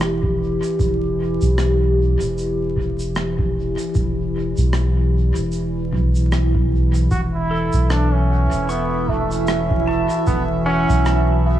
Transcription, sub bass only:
0, 0, Header, 1, 2, 480
1, 0, Start_track
1, 0, Tempo, 789474
1, 483, Time_signature, 4, 2, 24, 8
1, 7050, End_track
2, 0, Start_track
2, 0, Title_t, "Sub bass"
2, 0, Program_c, 0, 38
2, 0, Note_on_c, 0, 28, 97
2, 355, Note_off_c, 0, 28, 0
2, 483, Note_on_c, 0, 28, 92
2, 835, Note_off_c, 0, 28, 0
2, 861, Note_on_c, 0, 35, 99
2, 1315, Note_off_c, 0, 35, 0
2, 1341, Note_on_c, 0, 28, 96
2, 2275, Note_off_c, 0, 28, 0
2, 2402, Note_on_c, 0, 28, 92
2, 2754, Note_off_c, 0, 28, 0
2, 2781, Note_on_c, 0, 35, 98
2, 3235, Note_off_c, 0, 35, 0
2, 3262, Note_on_c, 0, 28, 93
2, 3599, Note_off_c, 0, 28, 0
2, 3603, Note_on_c, 0, 35, 98
2, 4303, Note_off_c, 0, 35, 0
2, 4325, Note_on_c, 0, 28, 95
2, 4676, Note_off_c, 0, 28, 0
2, 4701, Note_on_c, 0, 35, 98
2, 5155, Note_off_c, 0, 35, 0
2, 5183, Note_on_c, 0, 28, 99
2, 6116, Note_off_c, 0, 28, 0
2, 6245, Note_on_c, 0, 28, 91
2, 6595, Note_off_c, 0, 28, 0
2, 6621, Note_on_c, 0, 35, 98
2, 7050, Note_off_c, 0, 35, 0
2, 7050, End_track
0, 0, End_of_file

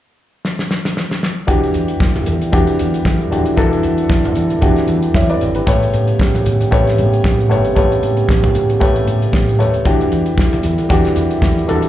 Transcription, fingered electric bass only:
0, 0, Header, 1, 2, 480
1, 0, Start_track
1, 0, Tempo, 523104
1, 1362, Time_signature, 4, 2, 24, 8
1, 10908, End_track
2, 0, Start_track
2, 0, Title_t, "Fingered electric bass"
2, 0, Program_c, 0, 33
2, 1363, Note_on_c, 0, 28, 92
2, 1531, Note_off_c, 0, 28, 0
2, 1604, Note_on_c, 0, 40, 89
2, 1773, Note_off_c, 0, 40, 0
2, 1840, Note_on_c, 0, 28, 85
2, 2010, Note_off_c, 0, 28, 0
2, 2086, Note_on_c, 0, 40, 88
2, 2324, Note_on_c, 0, 28, 92
2, 2338, Note_off_c, 0, 40, 0
2, 2493, Note_off_c, 0, 28, 0
2, 2569, Note_on_c, 0, 40, 82
2, 2736, Note_off_c, 0, 40, 0
2, 2802, Note_on_c, 0, 40, 87
2, 2971, Note_off_c, 0, 40, 0
2, 3043, Note_on_c, 0, 27, 65
2, 3212, Note_off_c, 0, 27, 0
2, 3284, Note_on_c, 0, 28, 102
2, 3453, Note_off_c, 0, 28, 0
2, 3525, Note_on_c, 0, 40, 99
2, 3694, Note_off_c, 0, 40, 0
2, 3761, Note_on_c, 0, 28, 81
2, 3931, Note_off_c, 0, 28, 0
2, 4004, Note_on_c, 0, 40, 83
2, 4173, Note_off_c, 0, 40, 0
2, 4242, Note_on_c, 0, 28, 105
2, 4412, Note_off_c, 0, 28, 0
2, 4483, Note_on_c, 0, 40, 94
2, 4652, Note_off_c, 0, 40, 0
2, 4722, Note_on_c, 0, 40, 91
2, 4892, Note_off_c, 0, 40, 0
2, 4965, Note_on_c, 0, 32, 78
2, 5134, Note_off_c, 0, 32, 0
2, 5206, Note_on_c, 0, 33, 89
2, 5375, Note_off_c, 0, 33, 0
2, 5450, Note_on_c, 0, 45, 89
2, 5617, Note_off_c, 0, 45, 0
2, 5687, Note_on_c, 0, 33, 87
2, 5855, Note_off_c, 0, 33, 0
2, 5930, Note_on_c, 0, 45, 95
2, 6097, Note_off_c, 0, 45, 0
2, 6170, Note_on_c, 0, 33, 109
2, 6413, Note_on_c, 0, 45, 81
2, 6427, Note_off_c, 0, 33, 0
2, 6579, Note_off_c, 0, 45, 0
2, 6648, Note_on_c, 0, 45, 88
2, 6895, Note_on_c, 0, 32, 66
2, 6909, Note_off_c, 0, 45, 0
2, 7060, Note_off_c, 0, 32, 0
2, 7131, Note_on_c, 0, 33, 98
2, 7298, Note_off_c, 0, 33, 0
2, 7369, Note_on_c, 0, 45, 95
2, 7536, Note_off_c, 0, 45, 0
2, 7607, Note_on_c, 0, 33, 88
2, 7775, Note_off_c, 0, 33, 0
2, 7852, Note_on_c, 0, 45, 94
2, 8018, Note_off_c, 0, 45, 0
2, 8090, Note_on_c, 0, 33, 89
2, 8257, Note_off_c, 0, 33, 0
2, 8325, Note_on_c, 0, 45, 89
2, 8494, Note_off_c, 0, 45, 0
2, 8563, Note_on_c, 0, 45, 96
2, 8807, Note_on_c, 0, 27, 65
2, 8821, Note_off_c, 0, 45, 0
2, 8975, Note_off_c, 0, 27, 0
2, 9047, Note_on_c, 0, 28, 95
2, 9215, Note_off_c, 0, 28, 0
2, 9289, Note_on_c, 0, 40, 91
2, 9456, Note_off_c, 0, 40, 0
2, 9525, Note_on_c, 0, 28, 83
2, 9694, Note_off_c, 0, 28, 0
2, 9766, Note_on_c, 0, 40, 89
2, 10006, Note_on_c, 0, 28, 112
2, 10020, Note_off_c, 0, 40, 0
2, 10174, Note_off_c, 0, 28, 0
2, 10244, Note_on_c, 0, 40, 81
2, 10413, Note_off_c, 0, 40, 0
2, 10482, Note_on_c, 0, 40, 85
2, 10652, Note_off_c, 0, 40, 0
2, 10726, Note_on_c, 0, 27, 73
2, 10894, Note_off_c, 0, 27, 0
2, 10908, End_track
0, 0, End_of_file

